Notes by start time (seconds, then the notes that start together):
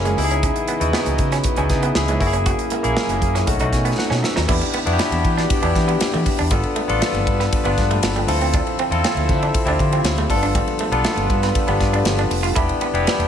Already playing: F#1 E3 F#3 A#3 C#4 E4 G#4 A#4
0.05 G#3 G#4, closed hi-hat
0.17 C#2 C#3 B3 D#4 E4 G4 D#5, muted clean electric guitar stroke, open hi-hat
0.24 G#4
0.30 C#4, closed hi-hat
0.43 C#4, kick, closed hi-hat
0.56 muted clean electric guitar stroke, closed hi-hat
0.68 B3, closed hi-hat
0.80 D#2 B3 D#4 E4 F#4, closed hi-hat
0.93 B3, snare
1.06 C#2, muted clean electric guitar stroke, closed hi-hat
1.18 C#3, kick, closed hi-hat
1.32 C#4, snare, closed hi-hat
1.44 kick, closed hi-hat
1.56 C#2 B3 C#4 D#4 E4 G#4, closed hi-hat
1.69 C#3 D#4 B4, muted clean electric guitar stroke, kick, snare, closed hi-hat
1.83 B3, closed hi-hat
1.95 C#2 G#4 E5, snare
2.08 G#3 E4 C#5, closed hi-hat
2.19 F#1 F#3 A#3 C#4 E4 F#4 G#4 A#4, muted clean electric guitar stroke, kick, open hi-hat
2.27 G#4
2.33 C#4, closed hi-hat
2.46 F#4, kick, closed hi-hat
2.59 muted clean electric guitar stroke, closed hi-hat
2.70 A#3, closed hi-hat
2.83 A#1 A#3 C#4 E4 G#4, closed hi-hat
2.97 A#3, snare
3.09 F#1, muted clean electric guitar stroke, closed hi-hat
3.21 F#2, kick, closed hi-hat
3.35 C#4, snare, closed hi-hat
3.46 B1 A3 B3 C#4 D#4 F#4, kick, closed hi-hat
3.59 B1 A3 C#4 D#4 F#4, closed hi-hat
3.72 B2 G#5, muted clean electric guitar stroke, kick, snare, closed hi-hat
3.85 B3, closed hi-hat
3.98 F#5, snare
4.10 B2 C#4, snare
4.23 E5, muted clean electric guitar stroke, snare
4.36 D#2 D#4, snare
4.48 E2 E3 B3 D4 E4 G4, kick, crash
4.61 muted clean electric guitar stroke, ride
4.73 B3, ride
4.86 F2 B3 D4 E4 F#4, ride
4.93 G4
4.99 B3, snare, ride
5.12 E2, muted clean electric guitar stroke, ride
5.25 E3, kick, ride
5.37 D4, snare, ride
5.50 kick, ride
5.62 E2 B3 D4 E4 G4, ride
5.75 E3, muted clean electric guitar stroke, kick, snare, ride
5.88 B3, ride
6.00 muted fingered electric bass stroke, snare, ride
6.14 E3 A3, ride
6.26 muted clean electric guitar stroke, kick, open hi-hat, ride
6.38 E2 D4, ride
6.50 G1 F3 G3 B3 D4 F4 A4 B4, kick, hi-hat pedal, ride
6.63 muted clean electric guitar stroke, ride
6.76 A3, ride
6.88 A1 B3 D4 F4 A4, ride
7.02 A3, snare, ride
7.14 G1, muted clean electric guitar stroke, ride
7.27 G2, kick, ride
7.40 B3, snare, ride
7.52 kick, ride
7.64 G1 B3 D4 F4 B4, ride
7.78 G2, muted clean electric guitar stroke, kick, snare, ride
7.91 A3, ride
8.02 G1, snare, ride
8.16 G3, ride
8.28 D2 D3 C4 E4 F4 A4 E5, muted clean electric guitar stroke, open hi-hat, ride
8.41 C4, ride
8.53 D4, kick, hi-hat pedal, ride
8.67 muted clean electric guitar stroke, ride
8.79 C4, ride
8.91 E2 C4 E4 F4 A4, ride
9.04 C4, snare, ride
9.16 D2, muted clean electric guitar stroke, ride
9.29 D3, kick, ride
9.42 D4, ride
9.54 kick, ride
9.65 D2 C4 D4 E4 F4 G4, ride
9.79 D3, muted clean electric guitar stroke, kick, ride
9.92 C4, ride
10.04 D2, snare, ride
10.18 A3, ride
10.29 G1 G3 A3 D4 F4 A4 B4, muted clean electric guitar stroke, kick, open hi-hat, ride
10.36 B3
10.43 D4, ride
10.55 G3, kick, hi-hat pedal, ride
10.67 muted clean electric guitar stroke, ride
10.79 A3, ride
10.91 B1 B3 D4 F4 A4, ride
11.04 A3, snare, ride
11.17 G1, muted clean electric guitar stroke, ride
11.30 G2, kick, ride
11.43 B3, snare, ride
11.55 kick, ride
11.67 G1 B3 D4 F4 G4, ride
11.81 G2, muted clean electric guitar stroke, kick, snare, ride
11.93 D4, ride
12.05 G1, snare, ride
12.18 D4, ride
12.31 F1, muted clean electric guitar stroke, open hi-hat, ride
12.43 F4, ride
12.55 E1 E3 B3 D4 E4 G4, kick, hi-hat pedal, ride
12.69 muted clean electric guitar stroke, ride
12.81 B3, ride
12.93 F1 B3 D4 E4 G4, ride
13.07 B3, snare, ride
13.19 E1, muted clean electric guitar stroke, ride